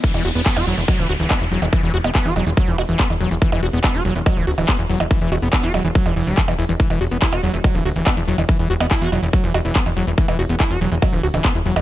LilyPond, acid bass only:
\new Staff \with { instrumentName = "Acid bass" } { \clef bass \time 4/4 \key c \lydian \tempo 4 = 142 e16 e16 fis'16 b16 b16 fis'16 fis16 e16 fis16 e16 fis'16 e16 b16 e16 fis16 e16 | e16 e16 fis'16 b16 b16 fis'16 fis16 e16 fis16 e16 fis'16 e16 b16 e16 fis16 e16 | e16 e16 fis'16 b16 b16 fis'16 fis16 e16 fis16 e16 fis'16 e16 b16 e16 fis16 e16 | e16 e16 fis'16 b16 b16 fis'16 fis16 e16 fis16 e16 e16 g16 e16 e16 e16 e16 |
e16 e16 fis'16 b16 e'16 fis'16 fis16 e16 fis16 e16 fis'16 e16 b16 e16 fis16 e16 | e16 e16 fis'16 b16 e'16 fis'16 fis16 e16 fis16 e16 fis'16 e16 b16 e16 fis16 e16 | e16 e16 fis'16 b16 e'16 fis'16 fis16 e16 fis16 e16 fis'16 e16 b16 e16 fis16 e16 | }